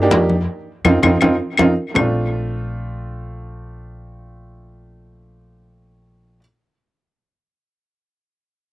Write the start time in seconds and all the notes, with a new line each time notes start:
0.02 A#3 D4 D#4 G4
0.10 F2, high bongo, low bongo, high conga, high timbale, low timbale
0.29 high conga
0.84 F2 C4 D#4 F4, low bongo, high conga, high timbale, claves
1.02 F2 C4 D#4 F4, low bongo, high conga, high timbale, claves
1.21 F2 C4 D#4 F4, low bongo, high conga, high timbale, claves
1.58 F2 C4 D#4 F4, low bongo, high conga, high timbale, claves
1.94 A#1 A3 C4 D4, low bongo, low conga, low timbale, claves
1.99 F4